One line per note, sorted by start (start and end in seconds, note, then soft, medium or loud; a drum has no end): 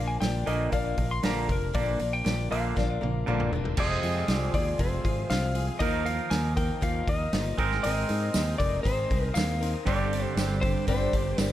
0.00 0.18 A#1 medium
0.00 0.19 A#2 medium
0.00 0.19 D3 medium
0.00 0.20 F3 soft
0.00 0.22 A#3 soft
0.00 0.22 D4 soft
0.00 0.23 A#4 soft
0.08 0.20 G#5 medium
0.20 0.43 A#1 medium
0.20 0.45 A#2 medium
0.20 0.45 D3 medium
0.20 0.47 F3 medium
0.20 0.47 A#3 medium
0.20 0.46 D4 medium
0.20 0.45 A#4 medium
0.20 0.48 G5 medium
0.20 snare medium
0.20 open hi-hat medium
0.46 0.69 A#1 medium
0.46 0.71 A#2 medium
0.46 0.72 D3 medium
0.46 0.71 F3 soft
0.46 0.71 A#3 soft
0.46 0.72 D4 soft
0.46 0.72 A#4 soft
0.46 0.72 D#5 medium
0.46 open hi-hat soft
0.72 0.94 A#1 medium
0.72 0.98 A#2 medium
0.72 0.98 D3 medium
0.72 0.98 F3 medium
0.72 0.98 A#3 medium
0.72 0.97 D4 medium
0.72 0.96 A#4 medium
0.72 1.12 F5 medium
0.72 kick medium
0.72 open hi-hat medium
0.97 1.19 A#1 medium
0.97 1.21 A#2 medium
0.97 1.22 D3 medium
0.97 1.22 F3 soft
0.97 1.22 A#3 soft
0.97 1.23 D4 soft
0.97 1.24 A#4 medium
0.97 kick medium
0.97 open hi-hat soft
1.11 1.25 C6 medium
1.23 1.46 A#1 medium
1.23 1.48 A#2 medium
1.23 1.48 D3 medium
1.23 1.49 F3 medium
1.23 1.49 A#3 medium
1.23 1.49 D4 medium
1.23 1.47 A#4 medium
1.23 1.51 A#5 medium
1.23 snare loud
1.23 open hi-hat medium
1.48 1.71 F1 medium
1.48 1.72 A#2 medium
1.48 1.73 D3 medium
1.48 1.73 F3 soft
1.48 1.74 A#3 soft
1.48 1.73 D4 soft
1.48 1.74 A#4 soft
1.48 1.77 A#4 medium
1.48 kick medium
1.48 open hi-hat soft
1.73 1.96 A#1 medium
1.73 2.00 A#2 medium
1.73 2.00 D3 medium
1.73 1.99 F3 medium
1.73 2.00 A#3 medium
1.73 1.99 D4 medium
1.73 1.98 A#4 medium
1.73 2.14 D5 medium
1.73 kick medium
1.73 open hi-hat medium
1.99 2.22 A#1 medium
1.99 2.23 A#2 medium
1.99 2.23 D3 medium
1.99 2.23 F3 soft
1.99 2.23 A#3 soft
1.99 2.24 D4 soft
1.99 2.25 A#4 soft
1.99 open hi-hat soft
2.13 2.51 G5 medium
2.24 2.47 A#1 medium
2.24 2.48 A#2 medium
2.24 2.48 D3 medium
2.24 2.50 F3 medium
2.24 2.49 A#3 medium
2.24 2.49 D4 medium
2.24 2.49 A#4 medium
2.24 snare medium
2.24 open hi-hat medium
2.50 2.73 A#1 medium
2.50 2.75 A#2 medium
2.50 2.75 D3 medium
2.50 2.75 F3 soft
2.50 2.77 A#3 soft
2.50 2.76 D4 soft
2.50 2.76 A#4 soft
2.50 3.49 F5 medium
2.50 open hi-hat soft
2.76 2.98 A#1 medium
2.76 3.02 A#2 medium
2.76 3.02 D3 medium
2.76 3.01 F3 medium
2.76 3.01 A#3 medium
2.76 3.00 D4 medium
2.76 3.00 A#4 medium
2.76 kick medium
2.76 snare soft
3.01 3.24 A#1 medium
3.01 3.25 A#2 medium
3.01 3.25 D3 medium
3.01 3.26 F3 soft
3.01 3.26 A#3 soft
3.01 3.27 D4 soft
3.01 3.27 A#4 soft
3.01 high tom medium
3.26 3.49 A#1 medium
3.26 3.51 A#2 medium
3.26 3.51 D3 medium
3.26 3.53 F3 medium
3.26 3.53 A#3 medium
3.26 3.53 D4 medium
3.26 3.52 A#4 medium
3.26 mid tom medium
3.40 mid tom medium
3.46 3.68 B3 medium
3.46 3.70 C4 medium
3.52 3.74 E1 medium
3.52 3.76 A#2 medium
3.52 3.76 D3 medium
3.52 3.77 A#3 medium
3.52 3.71 D4 medium
3.52 3.78 D4 medium
3.52 3.72 E4 medium
3.52 3.78 A#4 medium
3.52 floor tom medium
3.56 3.76 F3 soft
3.56 3.74 F4 medium
3.60 3.75 G4 medium
3.60 3.77 A4 medium
3.65 3.78 B4 medium
3.65 3.79 C5 medium
3.65 floor tom medium
3.71 3.81 D5 medium
3.71 3.83 E5 medium
3.76 3.97 F1 medium
3.76 5.79 F2 medium
3.76 5.79 C3 medium
3.76 4.03 F3 medium
3.76 5.79 G#3 medium
3.76 5.80 G#3 medium
3.76 5.79 C4 medium
3.76 4.02 C4 medium
3.76 5.78 F4 medium
3.76 4.01 F4 medium
3.76 5.78 G#4 medium
3.76 4.02 G#4 medium
3.76 4.34 D#5 medium
3.76 kick loud
3.76 crash loud
4.03 4.22 F2 medium
4.03 4.29 C4 soft
4.03 4.29 F4 soft
4.03 4.29 G#4 soft
4.03 open hi-hat medium
4.28 4.48 C2 medium
4.28 4.54 F3 medium
4.28 4.53 C4 medium
4.28 4.53 F4 medium
4.28 4.51 G#4 medium
4.28 snare loud
4.28 open hi-hat medium
4.34 4.54 D5 medium
4.52 4.73 D#2 medium
4.52 4.78 C4 soft
4.52 4.78 F4 soft
4.52 4.78 G#4 soft
4.52 4.81 D5 medium
4.52 kick medium
4.52 open hi-hat medium
4.78 4.98 F1 medium
4.78 5.04 F3 medium
4.78 5.04 C4 medium
4.78 5.03 F4 medium
4.78 5.03 G#4 medium
4.78 5.27 C5 medium
4.78 kick medium
4.78 open hi-hat medium
5.04 5.24 G#1 medium
5.04 5.29 C4 soft
5.04 5.30 F4 soft
5.04 5.30 G#4 medium
5.04 kick medium
5.04 open hi-hat soft
5.30 5.69 C2 loud
5.30 5.56 F3 medium
5.30 5.55 C4 medium
5.30 5.54 F4 medium
5.30 5.53 G#4 medium
5.30 5.66 F5 medium
5.30 snare loud
5.30 open hi-hat medium
5.54 5.79 C4 soft
5.54 5.80 F4 medium
5.54 5.80 G#4 medium
5.54 open hi-hat medium
5.79 6.18 D#2 medium
5.79 6.06 D#3 medium
5.79 6.06 F3 medium
5.79 6.05 A#3 medium
5.79 7.56 A#3 medium
5.79 7.56 D#4 medium
5.79 6.04 D#4 medium
5.79 7.56 F4 medium
5.79 7.57 A#4 medium
5.79 6.03 A#4 medium
5.79 6.06 D#5 medium
5.79 kick loud
5.79 open hi-hat medium
6.05 6.31 A#3 soft
6.05 6.31 D#4 soft
6.05 6.31 A#4 medium
6.05 6.32 F5 medium
6.05 open hi-hat medium
6.30 6.69 D#2 medium
6.30 6.57 F3 medium
6.30 6.57 A#3 medium
6.30 6.56 D#4 medium
6.30 6.55 A#4 medium
6.30 6.55 G#5 loud
6.30 snare medium
6.30 open hi-hat medium
6.56 6.81 A#3 soft
6.56 6.81 D#4 soft
6.56 6.81 A#4 medium
6.56 6.83 G5 medium
6.56 kick medium
6.56 open hi-hat medium
6.81 7.01 D#2 loud
6.81 7.07 D#3 medium
6.81 7.08 F3 medium
6.81 7.08 A#3 medium
6.81 7.08 D#4 medium
6.81 7.07 A#4 medium
6.81 7.09 F5 medium
6.81 kick medium
6.81 open hi-hat medium
7.08 7.27 D#2 medium
7.08 7.31 A#3 soft
7.08 7.32 D#4 soft
7.08 7.33 A#4 medium
7.08 7.56 D#5 medium
7.08 kick medium
7.08 open hi-hat medium
7.33 7.52 G1 medium
7.33 7.58 F3 medium
7.33 7.58 A#3 medium
7.33 7.58 D#4 medium
7.33 7.56 A#4 medium
7.33 snare loud
7.33 open hi-hat medium
7.57 7.78 G#1 medium
7.57 9.59 G#3 medium
7.57 9.84 C4 medium
7.57 7.83 C4 soft
7.57 7.83 D#4 medium
7.57 9.85 D#4 medium
7.57 9.85 G#4 medium
7.57 7.83 A#4 medium
7.57 9.84 A#4 medium
7.57 kick medium
7.57 open hi-hat soft
7.71 snare soft
7.83 8.04 G#1 medium
7.83 8.10 G#3 medium
7.83 8.10 C4 medium
7.83 8.08 D#4 medium
7.83 8.08 A#4 medium
7.83 8.58 D#5 medium
7.83 open hi-hat medium
8.09 8.29 G#2 medium
8.09 8.34 C4 soft
8.09 8.35 D#4 soft
8.09 8.34 A#4 soft
8.09 open hi-hat medium
8.34 8.54 D#2 medium
8.34 8.60 G#3 medium
8.34 8.59 C4 medium
8.34 8.58 D#4 medium
8.34 8.58 A#4 medium
8.34 snare loud
8.34 open hi-hat medium
8.34 tambourine medium
8.58 8.79 F1 medium
8.58 8.84 C4 soft
8.58 8.84 D#4 soft
8.58 8.84 A#4 soft
8.58 8.83 D5 medium
8.58 kick medium
8.58 open hi-hat medium
8.83 9.04 G#1 loud
8.83 9.10 G#3 medium
8.83 9.11 C4 medium
8.83 9.10 D#4 medium
8.83 9.09 A#4 medium
8.83 9.26 C5 medium
8.83 kick medium
8.83 open hi-hat medium
9.10 9.30 C2 medium
9.10 9.34 C4 soft
9.10 9.35 D#4 soft
9.10 9.35 A#4 medium
9.10 kick medium
9.10 open hi-hat medium
9.26 9.37 A#4 medium
9.34 9.74 D#2 loud
9.34 9.61 G#3 medium
9.34 9.61 C4 medium
9.34 9.61 D#4 medium
9.34 9.59 A#4 medium
9.34 9.70 F5 loud
9.34 snare loud
9.34 open hi-hat medium
9.34 tambourine medium
9.60 9.87 C4 soft
9.60 9.87 D#4 soft
9.60 9.86 A#4 medium
9.60 open hi-hat medium
9.86 10.24 G1 medium
9.86 10.12 G2 medium
9.86 10.12 D3 medium
9.86 10.12 G3 medium
9.86 11.52 C4 medium
9.86 10.13 C4 medium
9.86 11.52 D4 medium
9.86 10.12 D4 medium
9.86 11.52 G4 medium
9.86 10.12 G4 medium
9.86 11.52 C5 medium
9.86 10.34 D5 medium
9.86 kick loud
9.86 open hi-hat medium
10.13 10.36 G3 soft
10.13 10.38 C4 soft
10.13 10.38 D4 soft
10.13 10.38 G4 medium
10.13 open hi-hat medium
10.37 10.75 G1 medium
10.37 10.63 G3 medium
10.37 10.64 C4 medium
10.37 10.64 D4 medium
10.37 10.64 G4 medium
10.37 snare loud
10.37 open hi-hat medium
10.37 tambourine medium
10.61 10.88 G4 medium
10.61 10.87 C5 loud
10.61 kick medium
10.61 open hi-hat medium
10.66 10.87 G3 soft
10.66 10.87 C4 soft
10.66 10.87 D4 soft
10.87 11.07 G1 medium
10.87 11.13 G2 medium
10.87 11.14 D3 medium
10.87 11.13 G3 medium
10.87 11.13 C4 medium
10.87 11.13 D4 medium
10.87 11.12 G4 medium
10.87 11.41 C5 medium
10.87 kick medium
10.87 open hi-hat medium
11.13 11.32 G1 medium
11.13 11.37 G3 soft
11.13 11.38 C4 soft
11.13 11.39 D4 medium
11.13 11.39 G4 medium
11.13 kick medium
11.13 open hi-hat medium
11.38 11.52 G1 medium
11.38 11.52 G3 medium
11.38 11.52 C4 medium
11.38 11.52 D4 medium
11.38 11.52 G4 medium
11.38 11.52 A#4 medium
11.38 snare loud
11.38 open hi-hat medium
11.38 tambourine loud